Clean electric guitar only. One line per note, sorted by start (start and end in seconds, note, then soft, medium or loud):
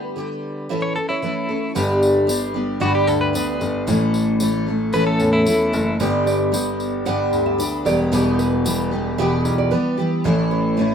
0.82 0.95 C#5 medium
0.96 1.08 A4 medium
1.09 1.72 E4 medium
2.81 2.94 F#4 medium
2.95 3.07 G4 medium
3.07 3.20 A4 medium
3.21 3.84 B4 medium
4.94 5.06 B4 medium
5.07 5.32 A4 medium
5.33 5.96 E4 medium